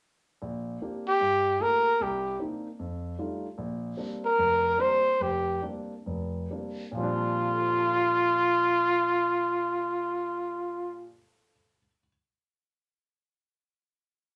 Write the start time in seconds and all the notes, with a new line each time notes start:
0.42 A#1
0.82 A#3 C4 D4 G4
1.08 G4
1.21 G2
1.60 A3 A#3 F4 G4 A#4
2.00 C2 G4
2.39 A#3 C4 D4 D#4
2.79 F2
3.19 G3 A3 D4 D#4 F4
3.58 A#1
3.97 G3 A#3 C4 D4
4.25 A#4
4.38 F1
4.78 G3 A#3 C4 D4 C5
5.20 F1 G4
5.62 G3 A#3 C4 D4
6.06 F1
6.50 G3 A#3 C4 D4
6.91 A#2 F3
6.97 G3 C4 F4
7.03 D4
7.44 F4
7.51 A4
7.60 C5
7.68 F5
7.78 A5
7.89 C6
8.01 F6